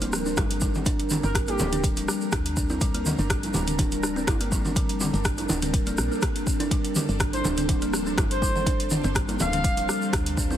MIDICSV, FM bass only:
0, 0, Header, 1, 2, 480
1, 0, Start_track
1, 0, Key_signature, -2, "minor"
1, 0, Tempo, 487805
1, 849, Time_signature, 4, 2, 24, 8
1, 10404, End_track
2, 0, Start_track
2, 0, Title_t, "FM bass"
2, 0, Program_c, 0, 39
2, 0, Note_on_c, 0, 26, 90
2, 337, Note_off_c, 0, 26, 0
2, 366, Note_on_c, 0, 31, 81
2, 1178, Note_off_c, 0, 31, 0
2, 1217, Note_on_c, 0, 31, 98
2, 1537, Note_off_c, 0, 31, 0
2, 1569, Note_on_c, 0, 26, 90
2, 2016, Note_off_c, 0, 26, 0
2, 2287, Note_on_c, 0, 38, 78
2, 3098, Note_off_c, 0, 38, 0
2, 3135, Note_on_c, 0, 31, 97
2, 3456, Note_off_c, 0, 31, 0
2, 3487, Note_on_c, 0, 26, 91
2, 4175, Note_off_c, 0, 26, 0
2, 4206, Note_on_c, 0, 31, 83
2, 5018, Note_off_c, 0, 31, 0
2, 5053, Note_on_c, 0, 31, 100
2, 5375, Note_off_c, 0, 31, 0
2, 5405, Note_on_c, 0, 26, 89
2, 5855, Note_off_c, 0, 26, 0
2, 5888, Note_on_c, 0, 34, 80
2, 5993, Note_off_c, 0, 34, 0
2, 6975, Note_on_c, 0, 31, 100
2, 7296, Note_off_c, 0, 31, 0
2, 7327, Note_on_c, 0, 26, 91
2, 8016, Note_off_c, 0, 26, 0
2, 8045, Note_on_c, 0, 31, 84
2, 8858, Note_off_c, 0, 31, 0
2, 8897, Note_on_c, 0, 31, 100
2, 9216, Note_off_c, 0, 31, 0
2, 9250, Note_on_c, 0, 26, 87
2, 9697, Note_off_c, 0, 26, 0
2, 9968, Note_on_c, 0, 38, 77
2, 10404, Note_off_c, 0, 38, 0
2, 10404, End_track
0, 0, End_of_file